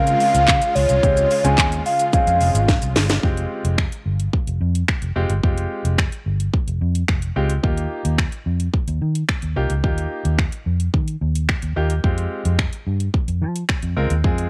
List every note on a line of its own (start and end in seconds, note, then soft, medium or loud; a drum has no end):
0.00 0.14 C#3 loud
0.00 3.19 C#3 medium
0.00 0.50 G#3 medium
0.00 3.19 G#3 medium
0.00 0.50 C4 medium
0.00 0.50 C#4 medium
0.00 0.50 F4 medium
0.00 3.19 F4 medium
0.00 0.50 A#4 medium
0.00 0.77 F5 loud
0.07 closed hi-hat medium
0.07 shaker soft
0.20 open hi-hat medium
0.20 shaker medium
0.35 0.45 C#2 medium
0.35 closed hi-hat medium
0.35 shaker medium
0.48 0.59 C#3 loud
0.48 kick loud
0.48 clap loud
0.48 shaker medium
0.62 closed hi-hat medium
0.62 shaker medium
0.75 0.86 C#2 loud
0.75 1.44 C#5 loud
0.75 open hi-hat medium
0.75 shaker medium
0.89 1.00 C2 medium
0.89 closed hi-hat medium
0.89 shaker medium
1.03 1.25 C#2 loud
1.03 1.24 G#3 medium
1.03 1.24 C4 medium
1.03 1.24 C#4 medium
1.03 1.25 F4 medium
1.03 1.25 G4 medium
1.03 kick loud
1.03 shaker medium
1.17 closed hi-hat medium
1.17 shaker medium
1.31 open hi-hat medium
1.31 shaker soft
1.44 1.55 C#2 medium
1.44 1.80 G#3 medium
1.44 1.80 C4 medium
1.44 1.80 C#4 medium
1.44 1.80 F4 medium
1.44 1.80 G#4 medium
1.44 1.83 G#5 loud
1.44 closed hi-hat medium
1.44 shaker medium
1.58 kick loud
1.58 clap loud
1.58 shaker medium
1.72 closed hi-hat medium
1.72 shaker medium
1.86 2.11 F5 loud
1.86 open hi-hat medium
1.86 shaker medium
1.99 closed hi-hat medium
1.99 shaker medium
2.13 2.70 G#3 medium
2.13 2.70 C4 medium
2.13 2.70 C#4 medium
2.13 2.70 F4 medium
2.13 2.70 G#4 medium
2.13 2.92 F5 loud
2.13 kick loud
2.13 shaker medium
2.27 2.38 F2 medium
2.27 closed hi-hat medium
2.27 shaker medium
2.41 2.51 F1 medium
2.41 open hi-hat medium
2.41 shaker medium
2.54 2.76 G#1 medium
2.54 closed hi-hat medium
2.54 shaker medium
2.69 kick loud
2.69 snare medium
2.69 shaker medium
2.82 2.93 C2 medium
2.82 closed hi-hat medium
2.82 shaker medium
2.96 3.17 G1 medium
2.96 snare loud
2.96 open hi-hat medium
2.96 shaker medium
3.09 snare loud
3.09 closed hi-hat medium
3.09 shaker medium
3.23 3.45 F1 loud
3.23 3.80 G#3 medium
3.23 3.80 C4 medium
3.23 3.80 F4 medium
3.23 3.80 G4 medium
3.23 kick loud
3.37 closed hi-hat soft
3.65 3.86 F1 medium
3.65 closed hi-hat medium
3.78 finger snap loud
3.78 kick loud
3.92 closed hi-hat soft
4.06 4.27 G1 medium
4.20 closed hi-hat medium
4.33 kick loud
4.47 4.58 F1 medium
4.47 closed hi-hat soft
4.61 4.82 F2 loud
4.75 closed hi-hat medium
4.88 finger snap loud
4.88 kick loud
5.02 5.13 F1 medium
5.02 closed hi-hat medium
5.16 5.26 F1 medium
5.16 5.30 G#3 medium
5.16 5.30 C4 medium
5.16 5.30 F4 medium
5.16 5.30 G4 loud
5.30 5.40 G1 medium
5.30 closed hi-hat medium
5.43 6.00 G#3 medium
5.43 6.00 C4 medium
5.43 6.01 F4 medium
5.43 6.01 G4 medium
5.43 kick loud
5.58 closed hi-hat soft
5.85 6.06 F1 medium
5.85 closed hi-hat medium
5.98 finger snap loud
5.98 kick loud
6.12 closed hi-hat soft
6.26 6.47 G1 medium
6.40 closed hi-hat medium
6.54 kick loud
6.67 6.78 F1 medium
6.67 closed hi-hat soft
6.81 7.02 F2 loud
6.95 closed hi-hat medium
7.08 7.30 F1 medium
7.08 finger snap loud
7.08 kick loud
7.22 closed hi-hat medium
7.36 7.57 C#2 medium
7.36 7.50 G#3 medium
7.36 7.50 C4 medium
7.36 7.50 F4 medium
7.36 7.50 G4 loud
7.50 closed hi-hat medium
7.63 7.85 D#2 loud
7.63 8.20 A#3 medium
7.63 8.20 D#4 medium
7.63 8.21 F4 medium
7.63 8.21 G4 medium
7.63 kick loud
7.78 closed hi-hat medium
8.05 8.26 D#2 medium
8.05 closed hi-hat medium
8.18 finger snap loud
8.18 kick loud
8.32 closed hi-hat soft
8.46 8.67 F2 medium
8.60 closed hi-hat medium
8.74 kick loud
8.88 8.98 D#2 medium
8.88 closed hi-hat soft
9.02 9.23 D#3 medium
9.15 closed hi-hat medium
9.29 finger snap loud
9.29 kick loud
9.42 9.53 D#2 medium
9.42 closed hi-hat medium
9.56 9.67 C2 medium
9.56 9.71 A#3 medium
9.56 9.71 D#4 medium
9.56 9.71 F4 medium
9.56 9.71 G4 loud
9.70 9.81 C#2 medium
9.70 closed hi-hat medium
9.83 10.05 D#2 loud
9.83 10.41 A#3 medium
9.83 10.41 D#4 medium
9.83 10.41 F4 medium
9.83 10.41 G4 medium
9.83 kick loud
9.98 closed hi-hat soft
10.25 10.46 D#2 loud
10.25 closed hi-hat medium
10.39 finger snap loud
10.39 kick loud
10.52 closed hi-hat soft
10.66 10.88 F2 medium
10.80 closed hi-hat medium
10.94 11.15 D#3 medium
10.94 kick loud
11.08 closed hi-hat soft
11.21 11.53 D#2 medium
11.35 closed hi-hat medium
11.49 finger snap loud
11.49 kick loud
11.62 11.73 D#2 medium
11.62 closed hi-hat medium
11.76 11.98 D#2 medium
11.76 11.91 A#3 medium
11.76 11.91 D#4 medium
11.76 11.91 F4 medium
11.76 11.91 G4 loud
11.90 closed hi-hat medium
12.04 12.25 F2 loud
12.04 12.61 G#3 medium
12.04 12.61 C4 medium
12.04 12.61 F4 medium
12.04 12.61 G4 medium
12.04 kick loud
12.18 closed hi-hat soft
12.45 12.67 F2 medium
12.45 closed hi-hat medium
12.59 finger snap loud
12.59 kick loud
12.73 closed hi-hat soft
12.87 13.08 G2 loud
13.00 closed hi-hat medium
13.14 kick loud
13.28 13.43 F2 medium
13.28 closed hi-hat soft
13.42 13.63 F3 medium
13.56 closed hi-hat medium
13.69 finger snap loud
13.69 kick loud
13.82 13.94 F2 medium
13.82 closed hi-hat medium
13.96 14.07 C#2 medium
13.96 14.11 G#3 medium
13.96 14.11 C4 medium
13.96 14.11 F4 medium
13.96 14.11 A#4 loud
14.10 14.21 D#2 medium
14.10 closed hi-hat medium
14.24 14.46 F2 loud
14.24 14.50 G#3 medium
14.24 14.50 C4 medium
14.24 14.50 F4 medium
14.24 14.50 G#4 loud
14.24 kick loud
14.38 closed hi-hat soft